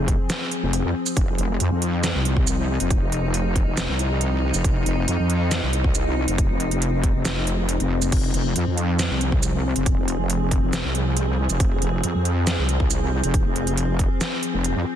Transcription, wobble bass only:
0.00 0.18 F1 loud
0.63 0.83 F1 loud
0.85 0.93 F2 medium
1.17 1.37 F1 medium
1.38 1.58 F1 loud
1.60 1.70 F2 loud
1.71 2.13 F2 loud
2.15 2.78 C2 medium
2.80 3.00 F1 medium
3.02 3.65 F1 loud
3.67 3.87 F1 loud
3.89 4.52 C2 loud
4.54 4.63 F1 medium
4.64 4.85 F1 loud
4.86 5.06 F1 loud
5.08 5.18 F2 loud
5.19 5.61 F2 loud
5.63 6.26 C2 medium
6.28 6.48 F1 medium
6.50 7.13 F1 loud
7.15 7.78 F1 loud
7.80 8.11 F1 loud
8.12 8.32 F1 loud
8.34 8.54 F1 loud
8.56 8.65 F2 loud
8.67 9.09 F2 loud
9.11 9.74 C2 medium
9.76 9.96 F1 loud
9.97 10.61 F1 loud
10.63 10.83 F1 loud
10.84 11.48 C2 loud
11.50 11.58 F1 loud
11.60 11.80 F1 loud
11.82 12.02 F1 loud
12.04 12.13 F2 loud
12.15 12.57 F2 loud
12.58 13.22 C2 loud
13.24 13.44 F1 loud
13.45 14.09 F1 loud
14.54 14.74 F1 loud
14.76 14.85 F2 loud

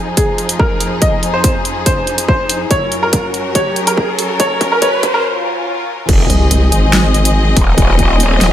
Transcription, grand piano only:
0.17 0.45 G#4 medium
0.59 0.88 A#4 medium
1.02 1.23 D#5 medium
1.34 1.55 C5 medium
1.86 2.14 C5 medium
2.28 2.57 C5 medium
2.71 2.92 C#5 medium
3.03 3.24 A#4 medium
3.55 3.76 C#5 medium
3.87 4.08 A#4 medium
4.40 4.61 C#5 loud
4.72 4.80 A#4 medium
4.82 5.03 C#5 loud
5.14 5.23 A#4 medium

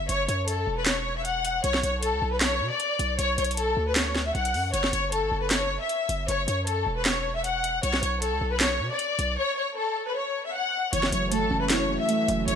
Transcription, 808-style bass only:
0.09 0.28 F#1 loud
0.28 0.66 F#2 loud
0.67 1.60 E1 loud
1.64 1.82 B1 loud
1.83 2.14 B1 loud
2.13 2.21 C#2 loud
2.22 2.62 B1 loud
2.61 2.70 B2 loud
2.99 3.18 B1 loud
3.19 3.37 B1 loud
3.38 3.75 B1 loud
3.77 4.33 D2 loud
4.35 4.56 B1 loud
4.54 4.73 F#2 loud
4.74 4.92 F#1 loud
4.93 5.24 F#1 loud
5.22 5.31 G#1 loud
5.32 5.79 F#1 loud
6.09 6.28 F#1 loud
6.28 6.47 F#1 loud
6.48 6.85 F#2 loud
6.86 7.79 E1 loud
7.83 8.02 B1 loud
8.03 8.34 B1 loud
8.32 8.41 C#2 loud
8.41 8.82 B1 loud
8.80 8.90 B2 loud
9.19 9.37 B1 loud
10.93 11.11 F#1 loud
11.12 11.43 F#1 loud
11.42 11.51 G#1 loud
11.51 11.98 F#1 loud
12.28 12.47 F#1 loud
12.48 12.55 F#1 loud

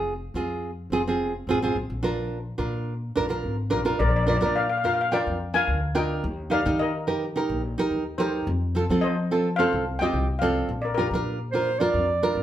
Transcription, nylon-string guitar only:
0.00 0.12 C4 medium
0.00 0.13 F4 medium
0.00 0.13 G#4 medium
0.35 0.69 C4 medium
0.35 0.70 F4 medium
0.35 0.70 G#4 medium
0.92 1.01 C4 medium
0.92 1.01 F4 medium
0.92 1.01 G#4 medium
1.07 1.32 C4 medium
1.07 1.32 F4 medium
1.07 1.33 G#4 medium
1.49 1.57 C4 medium
1.49 1.58 F4 medium
1.49 1.58 G#4 loud
1.62 1.76 C4 medium
1.62 1.76 F4 medium
1.62 1.76 G#4 medium
2.03 2.37 D4 medium
2.03 2.37 F4 medium
2.03 2.38 A#4 medium
2.58 2.93 D4 medium
2.58 2.93 F4 medium
2.58 2.93 A#4 medium
3.16 3.24 D4 medium
3.16 3.25 F4 medium
3.16 3.25 A#4 medium
3.29 3.55 D4 medium
3.29 3.55 F4 medium
3.29 3.55 A#4 medium
3.70 3.80 D4 medium
3.70 3.80 F4 medium
3.70 3.80 A#4 loud
3.85 3.99 D4 medium
3.85 3.99 F4 medium
3.85 3.99 A#4 medium
4.26 4.36 D4 medium
4.26 4.36 F4 medium
4.26 4.37 A#4 medium
4.41 4.67 D4 medium
4.41 4.67 F4 medium
4.41 4.67 A#4 medium
4.84 5.01 D4 medium
4.84 5.01 F4 medium
4.84 5.01 A#4 medium
5.11 5.37 D4 medium
5.11 5.37 F4 medium
5.11 5.38 A#4 medium
5.54 5.79 D4 medium
5.54 5.79 F4 medium
5.54 5.79 A#4 medium
5.95 6.23 D4 medium
5.95 6.23 F4 medium
5.95 6.23 A#4 medium
6.50 6.59 D#4 medium
6.50 6.59 G4 medium
6.50 6.60 A#4 medium
6.66 6.91 D#4 medium
6.66 6.91 G4 medium
6.66 6.91 A#4 medium
7.07 7.24 D#4 medium
7.07 7.25 G4 medium
7.07 7.25 A#4 medium
7.36 7.60 D#4 medium
7.36 7.61 G4 medium
7.36 7.61 A#4 medium
7.78 8.03 D#4 medium
7.78 8.03 G4 medium
7.78 8.03 A#4 loud
8.18 8.46 D#4 medium
8.18 8.47 G4 medium
8.18 8.47 A#4 medium
8.75 8.83 C4 medium
8.75 8.84 F4 medium
8.75 8.84 A4 medium
8.90 9.15 C4 medium
8.90 9.15 F4 medium
8.90 9.15 A4 medium
9.31 9.48 C4 medium
9.31 9.48 F4 medium
9.31 9.48 A4 medium
9.59 9.84 C4 medium
9.59 9.84 F4 medium
9.59 9.84 A4 medium
10.01 10.26 C4 medium
10.01 10.26 F4 medium
10.01 10.26 G4 medium
10.41 10.69 C4 medium
10.41 10.69 F4 medium
10.41 10.70 A4 medium
10.97 11.06 D4 medium
10.97 11.06 F4 medium
10.97 11.07 A#4 medium
11.13 11.37 D4 medium
11.13 11.38 F4 medium
11.13 11.38 A#4 medium
11.53 11.70 D4 medium
11.53 11.71 F4 medium
11.53 11.71 A#4 medium
11.80 12.06 D4 medium
11.80 12.06 F4 medium
11.80 12.06 A#4 medium
12.23 12.43 D4 medium
12.23 12.43 F4 medium
12.23 12.43 A#4 medium

